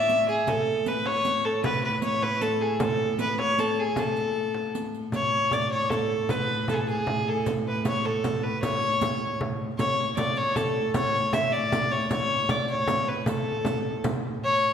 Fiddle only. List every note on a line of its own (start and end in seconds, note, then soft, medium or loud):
0.00 0.28 E5 loud
0.29 0.49 G#4 medium
0.47 0.89 A4 loud
0.88 1.08 B4 medium
1.07 1.46 C#5 loud
1.45 1.64 A4 medium
1.64 1.82 B4 medium
1.84 2.02 B4 medium
2.03 2.25 C#5 medium
2.23 2.43 B4 loud
2.41 2.63 A4 medium
2.61 2.80 G#4 medium
2.81 3.17 A4 medium
3.21 3.38 B4 medium
3.40 3.61 C#5 medium
3.59 3.81 A4 medium
3.79 4.00 G#4 medium
3.98 4.76 A4 medium
5.14 5.54 C#5 medium
5.53 5.71 D5 medium
5.72 5.92 C#5 medium
5.90 6.32 A4 medium
6.30 6.68 B4 loud
6.69 6.75 A4 medium
6.74 6.81 G#4 medium
6.79 6.88 A4 medium
6.89 7.30 G#4 medium
7.28 7.47 A4 medium
7.68 7.85 B4 medium
7.87 8.07 C#5 medium
8.06 8.45 A4 medium
8.43 8.62 B4 medium
8.63 9.36 C#5 medium
9.78 10.14 C#5 medium
10.17 10.39 D5 medium
10.37 10.57 C#5 medium
10.56 10.95 A4 medium
10.96 11.35 C#5 loud
11.33 11.54 E5 medium
11.52 11.93 D5 medium
11.91 12.10 C#5 medium
12.11 12.51 C#5 loud
12.50 12.69 D5 medium
12.70 13.10 C#5 medium
13.08 13.27 B4 medium
13.28 14.01 A4 medium
14.44 14.73 C#5 loud